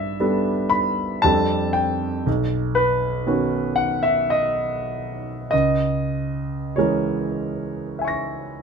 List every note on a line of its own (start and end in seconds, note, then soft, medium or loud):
0.00 0.16 G2 soft
0.00 0.70 E5 medium
0.20 1.20 G3 soft
0.20 1.20 B3 soft
0.20 1.20 D4 soft
0.20 1.20 A4 soft
0.70 1.23 B5 medium
1.22 2.24 F2 soft
1.22 2.23 G3 soft
1.22 2.23 C4 soft
1.22 2.24 D4 soft
1.22 2.24 A4 soft
1.22 1.75 A5 medium
1.73 2.26 G5 medium
2.26 3.23 B1 soft
2.75 3.76 B4 medium
3.27 5.48 D#3 soft
3.27 5.48 B3 soft
3.27 5.48 C#4 soft
3.27 5.48 F#4 soft
3.76 4.03 F#5 medium
4.03 4.30 E5 medium
4.30 5.49 D#5 medium
5.51 6.73 C#2 soft
5.51 6.76 D#5 medium
6.76 8.62 E3 soft
6.76 8.62 G#3 soft
6.76 8.62 C#4 soft
6.76 8.62 A#4 soft
6.76 8.59 C#5 soft
7.99 8.62 E5 soft
7.99 8.62 G#5 soft
8.05 8.62 C#6 soft
8.05 8.62 A#6 soft